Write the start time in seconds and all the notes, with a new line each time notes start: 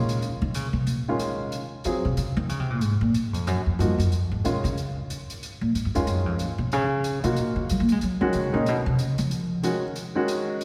Already playing: A#2 D#3 G#3 C#4 F4
0.09 closed hi-hat
0.22 closed hi-hat
0.42 D#3
0.54 C#3, closed hi-hat
0.73 C3
0.87 A#2, closed hi-hat
1.08 D#3 G#3 C#4 F4
1.19 closed hi-hat
1.52 closed hi-hat
1.84 D#3 F#3 C4 F4 G#4, closed hi-hat
2.05 C3
2.17 C#3, closed hi-hat
2.37 D#3
2.49 C#3, closed hi-hat
2.60 C3
2.70 A#2
2.81 G#2, closed hi-hat
3.01 A#2
3.14 G#2, closed hi-hat
3.33 F2, closed hi-hat
3.47 F#2, closed hi-hat
3.66 F2
3.79 G2 F3 A#3 D#4 F#4, closed hi-hat
3.98 F#2, closed hi-hat
4.12 F2, closed hi-hat
4.32 G#2
4.44 B2 D#3 G#3 C#4 F4, closed hi-hat
4.64 C#3, closed hi-hat
4.78 closed hi-hat
5.10 closed hi-hat
5.30 closed hi-hat
5.43 closed hi-hat
5.61 A#2
5.75 G#2, closed hi-hat
5.85 F#2
5.95 F2 D#3 G#3 C#4 F4, closed hi-hat
6.07 F#2, closed hi-hat
6.26 F2
6.39 G#2, closed hi-hat
6.58 B2
6.72 C#3, closed hi-hat
7.04 closed hi-hat
7.24 B2 A#3 D#4 F4 F#4, closed hi-hat
7.36 A#2, closed hi-hat
7.56 C#3
7.69 F#3, closed hi-hat
7.80 A#3
7.89 G#3, closed hi-hat
8.01 F#3, closed hi-hat
8.21 D#3 G#3 C#4 F#4
8.33 C#3, closed hi-hat
8.53 A#2 D#3 G#3 C#4 D#4
8.66 B2, closed hi-hat
8.86 C3
8.99 C#3, closed hi-hat
9.18 F3, closed hi-hat
9.31 closed hi-hat
9.63 D#3 G#3 C#4 F#4, closed hi-hat
9.96 closed hi-hat
10.15 D#3 G#3 C#4 F#4
10.28 closed hi-hat
10.61 closed hi-hat